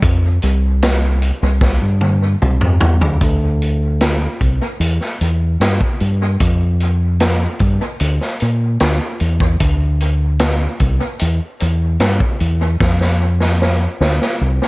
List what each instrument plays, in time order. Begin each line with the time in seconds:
0.02 fingered electric bass F2, kick, closed hi-hat
0.42 fingered electric bass C2, closed hi-hat
0.82 snare, closed hi-hat
1.22 closed hi-hat
1.43 fingered electric bass C2
1.61 kick, snare
1.82 fingered electric bass G2
2.01 high tom
2.42 fingered electric bass C2, mid tom
2.61 fingered electric bass F2, mid tom
2.81 fingered electric bass E2, floor tom
3.00 fingered electric bass D2, floor tom
3.21 fingered electric bass D2, kick, closed hi-hat
3.62 closed hi-hat
4.01 snare, closed hi-hat
4.41 fingered electric bass C2, kick, closed hi-hat
4.80 fingered electric bass E2, closed hi-hat
5.01 snare
5.21 fingered electric bass E2, closed hi-hat
5.60 fingered electric bass G2, snare, closed hi-hat
5.81 kick
6.00 fingered electric bass G2, closed hi-hat
6.40 fingered electric bass F2, kick, closed hi-hat
6.80 closed hi-hat
7.20 snare, closed hi-hat
7.59 fingered electric bass G2, kick, closed hi-hat
8.00 fingered electric bass D2, closed hi-hat
8.21 snare
8.40 fingered electric bass A#2, closed hi-hat
8.80 fingered electric bass D2, snare, closed hi-hat
9.20 fingered electric bass E2, closed hi-hat
9.40 kick
9.60 fingered electric bass D2, kick, closed hi-hat
10.00 closed hi-hat
10.39 snare, closed hi-hat
10.80 fingered electric bass C2, kick, closed hi-hat
11.19 fingered electric bass E2, closed hi-hat
11.60 fingered electric bass E2, closed hi-hat
12.00 fingered electric bass G2, snare, closed hi-hat
12.20 kick
12.40 fingered electric bass E2, closed hi-hat
12.80 fingered electric bass F2, kick, snare
13.01 snare
13.40 snare
13.62 snare
14.01 fingered electric bass D2, snare
14.22 snare
14.41 fingered electric bass C2
14.62 snare